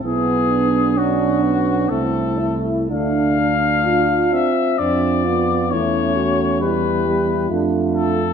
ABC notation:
X:1
M:3/4
L:1/8
Q:1/4=65
K:Ddor
V:1 name="Cornet"
^G2 ^F2 A z | f3 e d2 | ^c2 B2 z A |]
V:2 name="French horn section"
E D3 E2 | D2 F2 F2 | ^C2 E2 D2 |]
V:3 name="Euphonium"
B,2 D ^C =C E | D z F C D F | E ^F G2 =F2 |]
V:4 name="Trombone"
B,2 ^C B, A,2 | A, D2 z C B, | A,2 G, G, A,2 |]
V:5 name="Tuba" clef=bass
B,,,4 C,,2 | D,,3 z F,,2 | E,,4 F,,2 |]